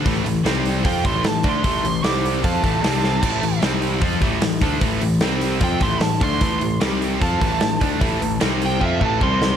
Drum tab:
CC |--------|--------|x-------|--------|
HH |oooooooo|ooooooo-|-ooooooo|oooooooo|
SD |--o---o-|--o---oo|--o---o-|--o---o-|
BD |o---oo-o|o---oo--|o---oo-o|o---oo-o|

CC |--------|--------|
HH |oooooooo|oooo----|
SD |--o---o-|--o----o|
BD |o---oo-o|o---ooo-|